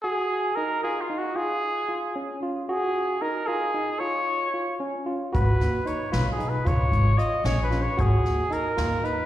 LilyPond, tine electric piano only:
\new Staff \with { instrumentName = "Tine electric piano" } { \time 5/8 \key gis \dorian \tempo 4 = 113 fis'4 dis'8 eis'8 dis'8 | eis'4 eis'8 cis'8 eis'8 | fis'4 dis'8 eis'8 dis'8 | eis'4 eis'8 cis'8 eis'8 |
fis'4 dis'8 eis'8 dis'8 | eis'4 eis'8 cis'8 eis'8 | fis'4 dis'8 eis'8 dis'8 | }